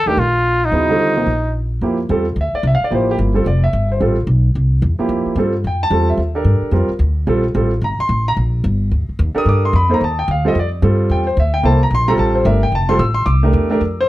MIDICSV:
0, 0, Header, 1, 5, 480
1, 0, Start_track
1, 0, Tempo, 272851
1, 1253, Time_signature, 4, 2, 24, 8
1, 24784, End_track
2, 0, Start_track
2, 0, Title_t, "Grand piano"
2, 0, Program_c, 0, 0
2, 125, Note_on_c, 0, 51, 59
2, 128, Note_on_c, 0, 57, 54
2, 132, Note_on_c, 0, 62, 54
2, 143, Note_on_c, 0, 70, 64
2, 146, Note_on_c, 0, 67, 53
2, 281, Note_off_c, 0, 51, 0
2, 283, Note_off_c, 0, 57, 0
2, 285, Note_off_c, 0, 62, 0
2, 290, Note_off_c, 0, 70, 0
2, 292, Note_off_c, 0, 67, 0
2, 1271, Note_on_c, 0, 54, 52
2, 1272, Note_on_c, 0, 49, 54
2, 1274, Note_on_c, 0, 59, 51
2, 1290, Note_on_c, 0, 64, 47
2, 1293, Note_on_c, 0, 68, 58
2, 1528, Note_off_c, 0, 49, 0
2, 1528, Note_off_c, 0, 54, 0
2, 1529, Note_off_c, 0, 59, 0
2, 1537, Note_off_c, 0, 64, 0
2, 1539, Note_off_c, 0, 68, 0
2, 1569, Note_on_c, 0, 50, 52
2, 1580, Note_on_c, 0, 55, 52
2, 1583, Note_on_c, 0, 60, 51
2, 1593, Note_on_c, 0, 69, 62
2, 1595, Note_on_c, 0, 65, 50
2, 1981, Note_off_c, 0, 50, 0
2, 1987, Note_off_c, 0, 55, 0
2, 1988, Note_off_c, 0, 60, 0
2, 1993, Note_off_c, 0, 69, 0
2, 1994, Note_off_c, 0, 65, 0
2, 2047, Note_on_c, 0, 48, 58
2, 2051, Note_on_c, 0, 53, 50
2, 2054, Note_on_c, 0, 58, 50
2, 2063, Note_on_c, 0, 63, 54
2, 2069, Note_on_c, 0, 67, 57
2, 2206, Note_off_c, 0, 48, 0
2, 2208, Note_off_c, 0, 53, 0
2, 2209, Note_off_c, 0, 58, 0
2, 2214, Note_off_c, 0, 63, 0
2, 2217, Note_off_c, 0, 67, 0
2, 3202, Note_on_c, 0, 58, 52
2, 3203, Note_on_c, 0, 53, 57
2, 3220, Note_on_c, 0, 64, 54
2, 3230, Note_on_c, 0, 67, 61
2, 3457, Note_off_c, 0, 53, 0
2, 3457, Note_off_c, 0, 58, 0
2, 3466, Note_off_c, 0, 64, 0
2, 3471, Note_off_c, 0, 67, 0
2, 3691, Note_on_c, 0, 55, 62
2, 3695, Note_on_c, 0, 60, 57
2, 3706, Note_on_c, 0, 65, 53
2, 3713, Note_on_c, 0, 69, 69
2, 3942, Note_off_c, 0, 55, 0
2, 3944, Note_off_c, 0, 60, 0
2, 3949, Note_off_c, 0, 65, 0
2, 3953, Note_off_c, 0, 69, 0
2, 4236, Note_on_c, 0, 76, 74
2, 4477, Note_off_c, 0, 76, 0
2, 4485, Note_on_c, 0, 74, 83
2, 4643, Note_off_c, 0, 74, 0
2, 4703, Note_on_c, 0, 76, 75
2, 4820, Note_off_c, 0, 76, 0
2, 4833, Note_on_c, 0, 77, 86
2, 4965, Note_off_c, 0, 77, 0
2, 5002, Note_on_c, 0, 74, 79
2, 5108, Note_on_c, 0, 53, 56
2, 5117, Note_on_c, 0, 58, 49
2, 5130, Note_off_c, 0, 74, 0
2, 5134, Note_on_c, 0, 64, 50
2, 5136, Note_on_c, 0, 67, 64
2, 5182, Note_on_c, 0, 72, 69
2, 5431, Note_off_c, 0, 72, 0
2, 5447, Note_off_c, 0, 67, 0
2, 5473, Note_on_c, 0, 67, 89
2, 5563, Note_off_c, 0, 67, 0
2, 5825, Note_off_c, 0, 53, 0
2, 5829, Note_off_c, 0, 58, 0
2, 5837, Note_off_c, 0, 64, 0
2, 5879, Note_on_c, 0, 55, 62
2, 5890, Note_on_c, 0, 60, 52
2, 5893, Note_on_c, 0, 65, 54
2, 5901, Note_on_c, 0, 69, 67
2, 6048, Note_off_c, 0, 55, 0
2, 6054, Note_off_c, 0, 60, 0
2, 6055, Note_off_c, 0, 65, 0
2, 6059, Note_off_c, 0, 69, 0
2, 6107, Note_on_c, 0, 74, 69
2, 6375, Note_off_c, 0, 74, 0
2, 6398, Note_on_c, 0, 76, 84
2, 6830, Note_off_c, 0, 76, 0
2, 6891, Note_on_c, 0, 72, 62
2, 7041, Note_on_c, 0, 55, 63
2, 7048, Note_on_c, 0, 60, 58
2, 7049, Note_off_c, 0, 72, 0
2, 7056, Note_on_c, 0, 65, 57
2, 7063, Note_on_c, 0, 69, 64
2, 7301, Note_off_c, 0, 55, 0
2, 7305, Note_off_c, 0, 60, 0
2, 7309, Note_off_c, 0, 65, 0
2, 7312, Note_off_c, 0, 69, 0
2, 8774, Note_on_c, 0, 53, 62
2, 8778, Note_on_c, 0, 58, 56
2, 8789, Note_on_c, 0, 64, 57
2, 8799, Note_on_c, 0, 67, 67
2, 9401, Note_off_c, 0, 53, 0
2, 9403, Note_off_c, 0, 58, 0
2, 9409, Note_off_c, 0, 64, 0
2, 9414, Note_off_c, 0, 67, 0
2, 9452, Note_on_c, 0, 55, 60
2, 9462, Note_on_c, 0, 60, 59
2, 9470, Note_on_c, 0, 65, 57
2, 9480, Note_on_c, 0, 69, 66
2, 9710, Note_off_c, 0, 55, 0
2, 9714, Note_off_c, 0, 60, 0
2, 9718, Note_off_c, 0, 65, 0
2, 9724, Note_off_c, 0, 69, 0
2, 9975, Note_on_c, 0, 79, 70
2, 10233, Note_off_c, 0, 79, 0
2, 10257, Note_on_c, 0, 81, 99
2, 10392, Note_on_c, 0, 55, 57
2, 10405, Note_on_c, 0, 65, 49
2, 10406, Note_on_c, 0, 60, 54
2, 10419, Note_on_c, 0, 69, 66
2, 10683, Note_off_c, 0, 81, 0
2, 10725, Note_on_c, 0, 76, 64
2, 10876, Note_off_c, 0, 55, 0
2, 10882, Note_off_c, 0, 65, 0
2, 10883, Note_off_c, 0, 60, 0
2, 10889, Note_off_c, 0, 69, 0
2, 10890, Note_off_c, 0, 76, 0
2, 11171, Note_on_c, 0, 69, 61
2, 11174, Note_on_c, 0, 62, 56
2, 11184, Note_on_c, 0, 67, 53
2, 11193, Note_on_c, 0, 70, 67
2, 11801, Note_off_c, 0, 69, 0
2, 11803, Note_off_c, 0, 62, 0
2, 11808, Note_off_c, 0, 67, 0
2, 11813, Note_off_c, 0, 70, 0
2, 11826, Note_on_c, 0, 55, 65
2, 11842, Note_on_c, 0, 60, 56
2, 11848, Note_on_c, 0, 65, 54
2, 11848, Note_on_c, 0, 70, 67
2, 12098, Note_off_c, 0, 55, 0
2, 12107, Note_off_c, 0, 60, 0
2, 12109, Note_off_c, 0, 65, 0
2, 12109, Note_off_c, 0, 70, 0
2, 12788, Note_on_c, 0, 55, 72
2, 12803, Note_on_c, 0, 60, 66
2, 12805, Note_on_c, 0, 65, 64
2, 12813, Note_on_c, 0, 69, 75
2, 13060, Note_off_c, 0, 55, 0
2, 13068, Note_off_c, 0, 60, 0
2, 13068, Note_off_c, 0, 65, 0
2, 13073, Note_off_c, 0, 69, 0
2, 13275, Note_on_c, 0, 55, 61
2, 13278, Note_on_c, 0, 60, 56
2, 13288, Note_on_c, 0, 65, 53
2, 13303, Note_on_c, 0, 69, 66
2, 13544, Note_off_c, 0, 55, 0
2, 13545, Note_off_c, 0, 60, 0
2, 13550, Note_off_c, 0, 65, 0
2, 13558, Note_off_c, 0, 69, 0
2, 13797, Note_on_c, 0, 82, 81
2, 14066, Note_off_c, 0, 82, 0
2, 14077, Note_on_c, 0, 84, 96
2, 14514, Note_off_c, 0, 84, 0
2, 14569, Note_on_c, 0, 82, 101
2, 14671, Note_off_c, 0, 82, 0
2, 16442, Note_on_c, 0, 69, 67
2, 16450, Note_on_c, 0, 62, 65
2, 16462, Note_on_c, 0, 67, 64
2, 16463, Note_on_c, 0, 70, 75
2, 16501, Note_on_c, 0, 87, 91
2, 16659, Note_off_c, 0, 87, 0
2, 16691, Note_on_c, 0, 86, 84
2, 16953, Note_off_c, 0, 86, 0
2, 16982, Note_on_c, 0, 84, 84
2, 17077, Note_off_c, 0, 69, 0
2, 17081, Note_off_c, 0, 62, 0
2, 17087, Note_off_c, 0, 67, 0
2, 17087, Note_off_c, 0, 70, 0
2, 17139, Note_off_c, 0, 84, 0
2, 17165, Note_on_c, 0, 83, 85
2, 17405, Note_on_c, 0, 58, 62
2, 17407, Note_on_c, 0, 63, 58
2, 17420, Note_on_c, 0, 69, 59
2, 17429, Note_off_c, 0, 83, 0
2, 17431, Note_on_c, 0, 72, 68
2, 17483, Note_on_c, 0, 82, 82
2, 17577, Note_off_c, 0, 58, 0
2, 17578, Note_off_c, 0, 63, 0
2, 17584, Note_off_c, 0, 69, 0
2, 17590, Note_off_c, 0, 72, 0
2, 17630, Note_off_c, 0, 82, 0
2, 17663, Note_on_c, 0, 81, 78
2, 17918, Note_off_c, 0, 81, 0
2, 17924, Note_on_c, 0, 79, 83
2, 18089, Note_off_c, 0, 79, 0
2, 18139, Note_on_c, 0, 77, 75
2, 18381, Note_on_c, 0, 55, 68
2, 18389, Note_on_c, 0, 60, 65
2, 18393, Note_on_c, 0, 65, 60
2, 18395, Note_off_c, 0, 77, 0
2, 18401, Note_on_c, 0, 69, 75
2, 18435, Note_on_c, 0, 75, 86
2, 18544, Note_off_c, 0, 55, 0
2, 18547, Note_off_c, 0, 60, 0
2, 18549, Note_off_c, 0, 65, 0
2, 18554, Note_off_c, 0, 69, 0
2, 18584, Note_off_c, 0, 75, 0
2, 18635, Note_on_c, 0, 74, 81
2, 18788, Note_off_c, 0, 74, 0
2, 19038, Note_on_c, 0, 55, 68
2, 19039, Note_on_c, 0, 60, 56
2, 19044, Note_on_c, 0, 65, 60
2, 19052, Note_on_c, 0, 69, 70
2, 19553, Note_on_c, 0, 79, 79
2, 19751, Note_off_c, 0, 55, 0
2, 19751, Note_off_c, 0, 60, 0
2, 19754, Note_off_c, 0, 65, 0
2, 19758, Note_off_c, 0, 69, 0
2, 19819, Note_off_c, 0, 79, 0
2, 19823, Note_on_c, 0, 72, 71
2, 19995, Note_off_c, 0, 72, 0
2, 20050, Note_on_c, 0, 76, 78
2, 20296, Note_on_c, 0, 79, 94
2, 20307, Note_off_c, 0, 76, 0
2, 20464, Note_on_c, 0, 58, 63
2, 20471, Note_off_c, 0, 79, 0
2, 20479, Note_on_c, 0, 64, 56
2, 20483, Note_on_c, 0, 69, 57
2, 20489, Note_on_c, 0, 72, 64
2, 20503, Note_on_c, 0, 81, 85
2, 20732, Note_off_c, 0, 58, 0
2, 20739, Note_off_c, 0, 64, 0
2, 20742, Note_off_c, 0, 69, 0
2, 20744, Note_off_c, 0, 72, 0
2, 20772, Note_off_c, 0, 81, 0
2, 20812, Note_on_c, 0, 82, 92
2, 20968, Note_off_c, 0, 82, 0
2, 21016, Note_on_c, 0, 84, 98
2, 21250, Note_on_c, 0, 55, 71
2, 21253, Note_on_c, 0, 82, 98
2, 21257, Note_on_c, 0, 60, 66
2, 21264, Note_on_c, 0, 65, 67
2, 21268, Note_off_c, 0, 84, 0
2, 21281, Note_on_c, 0, 69, 80
2, 21427, Note_off_c, 0, 82, 0
2, 21447, Note_on_c, 0, 81, 80
2, 21722, Note_off_c, 0, 81, 0
2, 21728, Note_on_c, 0, 72, 68
2, 21872, Note_off_c, 0, 55, 0
2, 21876, Note_off_c, 0, 60, 0
2, 21879, Note_off_c, 0, 65, 0
2, 21887, Note_off_c, 0, 69, 0
2, 21903, Note_off_c, 0, 72, 0
2, 21909, Note_on_c, 0, 57, 55
2, 21917, Note_on_c, 0, 62, 52
2, 21917, Note_on_c, 0, 76, 78
2, 21921, Note_on_c, 0, 67, 54
2, 21921, Note_on_c, 0, 70, 65
2, 22171, Note_off_c, 0, 57, 0
2, 22175, Note_off_c, 0, 62, 0
2, 22177, Note_off_c, 0, 67, 0
2, 22177, Note_off_c, 0, 70, 0
2, 22195, Note_off_c, 0, 76, 0
2, 22220, Note_on_c, 0, 79, 88
2, 22389, Note_off_c, 0, 79, 0
2, 22432, Note_on_c, 0, 81, 88
2, 22674, Note_on_c, 0, 84, 93
2, 22675, Note_on_c, 0, 55, 72
2, 22679, Note_on_c, 0, 60, 69
2, 22685, Note_on_c, 0, 65, 69
2, 22692, Note_off_c, 0, 81, 0
2, 22695, Note_on_c, 0, 69, 75
2, 22842, Note_off_c, 0, 55, 0
2, 22843, Note_off_c, 0, 60, 0
2, 22846, Note_off_c, 0, 65, 0
2, 22852, Note_off_c, 0, 69, 0
2, 22854, Note_off_c, 0, 84, 0
2, 22857, Note_on_c, 0, 88, 92
2, 23124, Note_on_c, 0, 84, 93
2, 23143, Note_off_c, 0, 88, 0
2, 23317, Note_off_c, 0, 84, 0
2, 23324, Note_on_c, 0, 86, 94
2, 23503, Note_off_c, 0, 86, 0
2, 23625, Note_on_c, 0, 57, 70
2, 23632, Note_on_c, 0, 62, 64
2, 23642, Note_on_c, 0, 67, 63
2, 23654, Note_on_c, 0, 70, 71
2, 24075, Note_off_c, 0, 57, 0
2, 24079, Note_off_c, 0, 62, 0
2, 24084, Note_off_c, 0, 67, 0
2, 24090, Note_off_c, 0, 70, 0
2, 24105, Note_on_c, 0, 57, 69
2, 24108, Note_on_c, 0, 62, 68
2, 24112, Note_on_c, 0, 67, 67
2, 24126, Note_on_c, 0, 70, 76
2, 24272, Note_off_c, 0, 57, 0
2, 24274, Note_off_c, 0, 62, 0
2, 24276, Note_off_c, 0, 67, 0
2, 24282, Note_off_c, 0, 70, 0
2, 24638, Note_on_c, 0, 72, 94
2, 24784, Note_off_c, 0, 72, 0
2, 24784, End_track
3, 0, Start_track
3, 0, Title_t, "Trumpet"
3, 0, Program_c, 1, 56
3, 131, Note_on_c, 1, 67, 81
3, 331, Note_on_c, 1, 65, 93
3, 358, Note_off_c, 1, 67, 0
3, 1144, Note_on_c, 1, 63, 81
3, 1170, Note_off_c, 1, 65, 0
3, 2737, Note_off_c, 1, 63, 0
3, 24784, End_track
4, 0, Start_track
4, 0, Title_t, "Upright bass"
4, 0, Program_c, 2, 32
4, 107, Note_on_c, 2, 40, 67
4, 278, Note_off_c, 2, 40, 0
4, 301, Note_on_c, 2, 34, 80
4, 1211, Note_off_c, 2, 34, 0
4, 1260, Note_on_c, 2, 39, 74
4, 2172, Note_off_c, 2, 39, 0
4, 2222, Note_on_c, 2, 34, 72
4, 3135, Note_off_c, 2, 34, 0
4, 3189, Note_on_c, 2, 41, 70
4, 3652, Note_off_c, 2, 41, 0
4, 3680, Note_on_c, 2, 40, 86
4, 4138, Note_off_c, 2, 40, 0
4, 4149, Note_on_c, 2, 38, 78
4, 4421, Note_off_c, 2, 38, 0
4, 4630, Note_on_c, 2, 36, 90
4, 4902, Note_off_c, 2, 36, 0
4, 5126, Note_on_c, 2, 33, 72
4, 5583, Note_off_c, 2, 33, 0
4, 5602, Note_on_c, 2, 31, 84
4, 6062, Note_off_c, 2, 31, 0
4, 6085, Note_on_c, 2, 29, 81
4, 6544, Note_off_c, 2, 29, 0
4, 6562, Note_on_c, 2, 31, 84
4, 7023, Note_off_c, 2, 31, 0
4, 7046, Note_on_c, 2, 33, 73
4, 7501, Note_off_c, 2, 33, 0
4, 7511, Note_on_c, 2, 35, 90
4, 7978, Note_off_c, 2, 35, 0
4, 8009, Note_on_c, 2, 36, 80
4, 8468, Note_off_c, 2, 36, 0
4, 8481, Note_on_c, 2, 40, 92
4, 8752, Note_off_c, 2, 40, 0
4, 8950, Note_on_c, 2, 41, 76
4, 9227, Note_off_c, 2, 41, 0
4, 9422, Note_on_c, 2, 43, 85
4, 9895, Note_off_c, 2, 43, 0
4, 9925, Note_on_c, 2, 41, 75
4, 10376, Note_off_c, 2, 41, 0
4, 10386, Note_on_c, 2, 40, 88
4, 10850, Note_off_c, 2, 40, 0
4, 10861, Note_on_c, 2, 39, 70
4, 11327, Note_off_c, 2, 39, 0
4, 11338, Note_on_c, 2, 43, 85
4, 11622, Note_off_c, 2, 43, 0
4, 11809, Note_on_c, 2, 41, 77
4, 12098, Note_off_c, 2, 41, 0
4, 12297, Note_on_c, 2, 38, 89
4, 12775, Note_off_c, 2, 38, 0
4, 12787, Note_on_c, 2, 34, 75
4, 13260, Note_off_c, 2, 34, 0
4, 13274, Note_on_c, 2, 33, 86
4, 13737, Note_off_c, 2, 33, 0
4, 13748, Note_on_c, 2, 31, 80
4, 14028, Note_off_c, 2, 31, 0
4, 14231, Note_on_c, 2, 33, 92
4, 14702, Note_off_c, 2, 33, 0
4, 14716, Note_on_c, 2, 34, 77
4, 15185, Note_off_c, 2, 34, 0
4, 15197, Note_on_c, 2, 31, 92
4, 15665, Note_off_c, 2, 31, 0
4, 15682, Note_on_c, 2, 38, 76
4, 15956, Note_off_c, 2, 38, 0
4, 16166, Note_on_c, 2, 39, 94
4, 16438, Note_off_c, 2, 39, 0
4, 16630, Note_on_c, 2, 43, 79
4, 17101, Note_off_c, 2, 43, 0
4, 17118, Note_on_c, 2, 41, 89
4, 17584, Note_off_c, 2, 41, 0
4, 17604, Note_on_c, 2, 39, 78
4, 18067, Note_off_c, 2, 39, 0
4, 18080, Note_on_c, 2, 38, 92
4, 18544, Note_off_c, 2, 38, 0
4, 18558, Note_on_c, 2, 41, 74
4, 19023, Note_off_c, 2, 41, 0
4, 19039, Note_on_c, 2, 43, 88
4, 19502, Note_off_c, 2, 43, 0
4, 19518, Note_on_c, 2, 40, 75
4, 19981, Note_off_c, 2, 40, 0
4, 19997, Note_on_c, 2, 38, 88
4, 20454, Note_off_c, 2, 38, 0
4, 20464, Note_on_c, 2, 36, 77
4, 20932, Note_off_c, 2, 36, 0
4, 20944, Note_on_c, 2, 34, 88
4, 21411, Note_off_c, 2, 34, 0
4, 21422, Note_on_c, 2, 33, 80
4, 21888, Note_off_c, 2, 33, 0
4, 21903, Note_on_c, 2, 31, 97
4, 22363, Note_off_c, 2, 31, 0
4, 22374, Note_on_c, 2, 29, 76
4, 22841, Note_off_c, 2, 29, 0
4, 22852, Note_on_c, 2, 33, 88
4, 23319, Note_off_c, 2, 33, 0
4, 23330, Note_on_c, 2, 36, 80
4, 23793, Note_off_c, 2, 36, 0
4, 23803, Note_on_c, 2, 40, 90
4, 24272, Note_off_c, 2, 40, 0
4, 24288, Note_on_c, 2, 41, 76
4, 24752, Note_off_c, 2, 41, 0
4, 24784, End_track
5, 0, Start_track
5, 0, Title_t, "Muted upright bass strokes"
5, 4454, Note_on_c, 9, 29, 37
5, 4630, Note_off_c, 9, 29, 0
5, 4941, Note_on_c, 9, 29, 38
5, 5116, Note_off_c, 9, 29, 0
5, 8780, Note_on_c, 9, 29, 35
5, 8956, Note_off_c, 9, 29, 0
5, 9253, Note_on_c, 9, 29, 37
5, 9429, Note_off_c, 9, 29, 0
5, 11634, Note_on_c, 9, 29, 39
5, 11810, Note_off_c, 9, 29, 0
5, 12124, Note_on_c, 9, 29, 37
5, 12300, Note_off_c, 9, 29, 0
5, 14053, Note_on_c, 9, 29, 40
5, 14228, Note_off_c, 9, 29, 0
5, 15989, Note_on_c, 9, 29, 41
5, 16165, Note_off_c, 9, 29, 0
5, 16452, Note_on_c, 9, 29, 38
5, 16628, Note_off_c, 9, 29, 0
5, 24784, End_track
0, 0, End_of_file